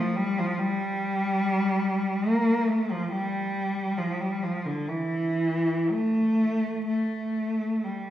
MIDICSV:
0, 0, Header, 1, 2, 480
1, 0, Start_track
1, 0, Tempo, 848656
1, 1760, Time_signature, 4, 2, 24, 8
1, 2242, Tempo, 890208
1, 2722, Tempo, 1030928
1, 3202, Tempo, 967742
1, 4301, End_track
2, 0, Start_track
2, 0, Title_t, "Cello"
2, 0, Program_c, 0, 42
2, 0, Note_on_c, 0, 53, 65
2, 91, Note_on_c, 0, 55, 71
2, 92, Note_off_c, 0, 53, 0
2, 207, Note_off_c, 0, 55, 0
2, 218, Note_on_c, 0, 53, 64
2, 332, Note_off_c, 0, 53, 0
2, 334, Note_on_c, 0, 55, 77
2, 1288, Note_off_c, 0, 55, 0
2, 1290, Note_on_c, 0, 58, 74
2, 1512, Note_on_c, 0, 57, 66
2, 1523, Note_off_c, 0, 58, 0
2, 1636, Note_off_c, 0, 57, 0
2, 1646, Note_on_c, 0, 53, 62
2, 1763, Note_off_c, 0, 53, 0
2, 1763, Note_on_c, 0, 55, 72
2, 2233, Note_off_c, 0, 55, 0
2, 2249, Note_on_c, 0, 53, 61
2, 2361, Note_off_c, 0, 53, 0
2, 2371, Note_on_c, 0, 55, 57
2, 2482, Note_off_c, 0, 55, 0
2, 2494, Note_on_c, 0, 53, 54
2, 2605, Note_off_c, 0, 53, 0
2, 2617, Note_on_c, 0, 50, 54
2, 2730, Note_off_c, 0, 50, 0
2, 2736, Note_on_c, 0, 52, 59
2, 3209, Note_off_c, 0, 52, 0
2, 3213, Note_on_c, 0, 57, 64
2, 3684, Note_off_c, 0, 57, 0
2, 3692, Note_on_c, 0, 57, 53
2, 4156, Note_off_c, 0, 57, 0
2, 4173, Note_on_c, 0, 55, 42
2, 4301, Note_off_c, 0, 55, 0
2, 4301, End_track
0, 0, End_of_file